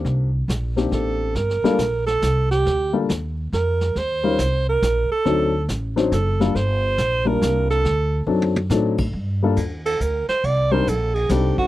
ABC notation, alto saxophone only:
X:1
M:3/4
L:1/8
Q:"Swing" 1/4=139
K:Gm
V:1 name="Alto saxophone"
z4 A2 | B3 A2 G- | G2 z2 B2 | c3 B2 A- |
A2 z2 A2 | c3 B2 A- | A2 z4 | z3 A B c |
d c A _A G ^F |]